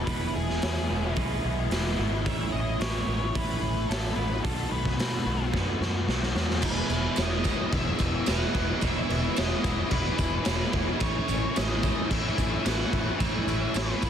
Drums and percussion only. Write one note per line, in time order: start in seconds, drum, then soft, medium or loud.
0.07 kick loud
0.07 open hi-hat medium
0.50 snare soft
0.62 snare loud
0.62 open hi-hat medium
1.16 kick loud
1.16 open hi-hat medium
1.71 snare loud
1.71 open hi-hat medium
2.26 kick loud
2.26 open hi-hat soft
2.81 snare loud
2.81 open hi-hat medium
3.35 kick loud
3.35 open hi-hat medium
3.91 snare loud
3.91 open hi-hat medium
4.45 kick loud
4.45 open hi-hat medium
4.85 kick medium
4.85 snare soft
4.99 snare loud
4.99 open hi-hat medium
5.54 kick loud
5.54 snare medium
5.82 snare medium
6.09 snare medium
6.23 snare medium
6.36 snare loud
6.50 snare medium
6.62 kick loud
6.62 crash loud
6.62 tambourine medium
6.62 crash medium
6.90 tambourine medium
6.90 crash medium
7.16 snare loud
7.16 tambourine loud
7.16 crash medium
7.44 kick medium
7.44 tambourine medium
7.44 crash medium
7.73 kick loud
7.73 crash medium
7.99 kick medium
7.99 tambourine medium
7.99 crash medium
8.26 snare loud
8.26 tambourine loud
8.26 crash medium
8.55 kick medium
8.55 crash medium
8.81 kick loud
8.81 tambourine medium
8.81 crash medium
9.10 crash medium
9.36 snare loud
9.36 tambourine loud
9.36 crash medium
9.64 kick medium
9.64 tambourine medium
9.64 crash medium
9.91 kick loud
9.91 crash medium
10.18 kick medium
10.18 tambourine medium
10.18 crash medium
10.45 snare loud
10.45 tambourine medium
10.45 crash medium
10.60 snare soft
10.73 kick medium
10.73 crash medium
11.00 kick loud
11.00 tambourine medium
11.00 crash medium
11.28 tambourine medium
11.28 crash medium
11.56 snare loud
11.56 tambourine loud
11.56 crash medium
11.83 kick medium
11.83 tambourine medium
11.83 crash medium
12.11 kick loud
12.11 crash medium
12.38 kick medium
12.38 tambourine medium
12.38 crash medium
12.65 snare loud
12.65 tambourine loud
12.65 crash medium
12.80 snare soft
12.93 kick medium
12.93 crash medium
13.20 kick loud
13.20 tambourine medium
13.20 crash medium
13.48 tambourine medium
13.48 crash medium
13.74 snare loud
13.74 tambourine medium
13.74 crash medium
14.02 kick medium
14.02 tambourine medium
14.02 crash medium